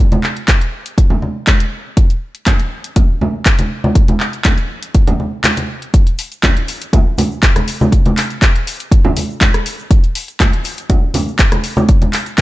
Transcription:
0.12 closed hi-hat soft
0.12 high conga medium
0.24 clap medium
0.37 closed hi-hat soft
0.48 kick medium
0.48 clap loud
0.48 closed hi-hat medium
0.61 closed hi-hat soft
0.86 closed hi-hat soft
0.98 kick loud
0.98 closed hi-hat medium
1.10 low conga medium
1.22 high conga medium
1.47 kick medium
1.47 clap loud
1.47 closed hi-hat medium
1.47 high conga medium
1.60 closed hi-hat soft
1.97 kick loud
1.97 closed hi-hat medium
2.10 closed hi-hat soft
2.35 closed hi-hat soft
2.46 kick medium
2.46 clap loud
2.46 closed hi-hat medium
2.46 low conga medium
2.60 closed hi-hat soft
2.84 closed hi-hat soft
2.96 kick loud
2.96 closed hi-hat medium
2.96 low conga medium
3.21 high conga medium
3.21 low conga medium
3.46 kick medium
3.46 clap loud
3.46 closed hi-hat medium
3.59 closed hi-hat medium
3.59 high conga medium
3.84 high conga medium
3.95 kick loud
3.95 closed hi-hat medium
4.08 closed hi-hat soft
4.08 high conga medium
4.20 clap medium
4.33 closed hi-hat soft
4.45 kick medium
4.45 clap loud
4.45 closed hi-hat medium
4.45 low conga medium
4.58 closed hi-hat soft
4.83 closed hi-hat medium
4.95 kick loud
4.95 closed hi-hat medium
5.07 closed hi-hat soft
5.07 low conga medium
5.20 high conga medium
5.44 clap loud
5.44 closed hi-hat medium
5.44 high conga medium
5.57 closed hi-hat medium
5.57 high conga medium
5.82 closed hi-hat soft
5.94 kick loud
5.94 closed hi-hat medium
5.94 cabasa soft
6.07 closed hi-hat soft
6.18 open hi-hat loud
6.18 cabasa medium
6.32 closed hi-hat soft
6.32 cabasa medium
6.43 kick loud
6.43 clap loud
6.43 closed hi-hat medium
6.43 low conga medium
6.43 cabasa soft
6.57 closed hi-hat soft
6.68 open hi-hat loud
6.68 cabasa medium
6.81 closed hi-hat medium
6.81 cabasa medium
6.93 kick loud
6.93 closed hi-hat medium
6.93 low conga medium
6.93 cabasa soft
7.18 open hi-hat loud
7.18 high conga medium
7.18 low conga medium
7.18 cabasa medium
7.31 cabasa medium
7.42 kick loud
7.42 clap loud
7.42 closed hi-hat medium
7.42 cabasa soft
7.56 cross-stick medium
7.56 closed hi-hat soft
7.56 high conga medium
7.68 open hi-hat loud
7.68 cabasa medium
7.81 high conga loud
7.81 cabasa medium
7.92 kick loud
7.92 closed hi-hat medium
7.92 cabasa soft
8.06 closed hi-hat soft
8.06 high conga medium
8.17 clap medium
8.17 open hi-hat loud
8.17 cabasa medium
8.30 closed hi-hat soft
8.30 cabasa medium
8.42 kick loud
8.42 clap loud
8.42 closed hi-hat medium
8.42 cabasa soft
8.56 closed hi-hat soft
8.67 open hi-hat loud
8.67 cabasa medium
8.80 closed hi-hat medium
8.80 cabasa soft
8.92 kick loud
8.92 closed hi-hat medium
8.92 cabasa soft
9.05 low conga loud
9.16 open hi-hat loud
9.16 high conga medium
9.16 cabasa medium
9.30 cabasa medium
9.41 kick loud
9.41 clap loud
9.41 closed hi-hat medium
9.41 high conga medium
9.41 cabasa soft
9.54 cross-stick medium
9.54 closed hi-hat soft
9.66 open hi-hat loud
9.66 cabasa medium
9.79 cabasa medium
9.91 kick loud
9.91 closed hi-hat medium
9.91 cabasa soft
10.04 closed hi-hat soft
10.15 open hi-hat loud
10.15 cabasa medium
10.28 closed hi-hat soft
10.28 cabasa medium
10.40 kick loud
10.40 clap loud
10.40 closed hi-hat medium
10.40 low conga medium
10.40 cabasa soft
10.53 closed hi-hat soft
10.64 open hi-hat loud
10.64 cabasa medium
10.78 closed hi-hat soft
10.78 cabasa soft
10.89 kick loud
10.89 closed hi-hat medium
10.89 low conga medium
10.89 cabasa soft
11.14 open hi-hat loud
11.14 high conga medium
11.14 low conga medium
11.14 cabasa medium
11.28 cabasa medium
11.39 kick loud
11.39 clap loud
11.39 closed hi-hat medium
11.39 cabasa soft
11.52 cross-stick medium
11.52 closed hi-hat soft
11.52 high conga medium
11.64 open hi-hat loud
11.64 cabasa medium
11.77 high conga loud
11.77 cabasa soft
11.88 kick loud
11.88 closed hi-hat medium
11.88 cabasa soft
12.02 closed hi-hat soft
12.02 high conga medium
12.13 clap medium
12.13 open hi-hat loud
12.13 cabasa medium
12.26 closed hi-hat soft
12.26 cabasa medium
12.38 clap loud

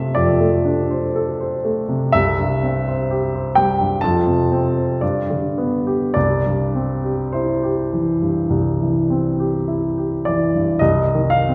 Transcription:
0.00 0.12 F2 soft
0.00 1.88 C3 soft
0.00 0.40 A3 soft
0.00 0.65 D4 soft
0.00 1.16 A4 soft
0.00 0.90 C5 soft
0.00 0.15 E5 medium
0.00 2.16 F5 medium
0.15 2.10 F2 soft
0.15 1.64 D5 medium
0.40 0.81 A3 soft
0.65 1.05 D4 soft
0.90 1.30 C5 soft
1.16 1.55 A4 soft
1.40 1.80 C5 soft
1.65 2.04 A3 soft
1.88 2.14 C3 soft
2.12 3.99 C2 soft
2.12 3.56 E5 medium
2.39 2.78 G2 soft
2.63 3.01 C4 soft
2.88 3.25 C5 soft
3.11 3.48 G4 soft
3.35 3.71 C5 soft
3.55 3.94 G3 soft
3.55 4.02 G5 medium
3.80 4.03 G2 soft
4.01 4.99 F2 soft
4.01 5.01 A5 medium
4.26 4.66 C3 soft
4.52 4.92 C4 soft
4.77 5.03 C5 soft
5.01 6.12 G2 soft
5.01 6.12 D5 soft
5.30 5.74 D3 soft
5.58 6.04 B3 soft
5.87 6.16 G4 soft
6.14 8.46 C2 soft
6.14 7.32 D5 medium
6.46 6.93 G2 soft
6.75 7.21 C4 soft
7.04 7.50 G4 soft
7.32 7.80 E4 soft
7.32 10.24 C5 soft
7.63 8.09 G4 soft
7.93 8.38 E3 soft
8.22 8.68 G2 soft
8.50 10.76 C2 soft
8.81 9.27 E3 soft
9.10 9.56 C4 soft
9.40 9.85 G4 soft
9.68 10.14 E4 soft
9.98 10.43 G4 soft
10.25 10.70 E3 soft
10.25 10.80 D5 medium
10.55 10.80 G2 soft
10.79 11.55 C2 soft
10.79 11.30 D#5 medium
11.15 11.55 D#3 soft
11.30 11.55 F5 medium
11.48 11.55 C4 soft

